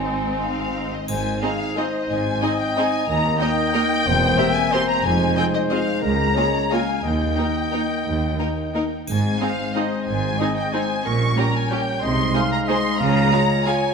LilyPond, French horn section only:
\new Staff \with { instrumentName = "French horn section" } { \time 3/4 \key aes \major \tempo 4 = 180 << { r2. | ees'2.~ | ees'2. | ees'2. |
c'2. | ees'2. | des'2. | ees'2.~ |
ees'2~ ees'8 r8 | c'2.~ | c'2. | des'2. |
ees'2. | f'2. | } \\ { r2. | c'2.~ | c'2. | bes2.~ |
bes2. | aes2.~ | aes2. | bes2.~ |
bes2~ bes8 r8 | aes2.~ | aes2. | g2. |
aes2.~ | aes2. | } >> }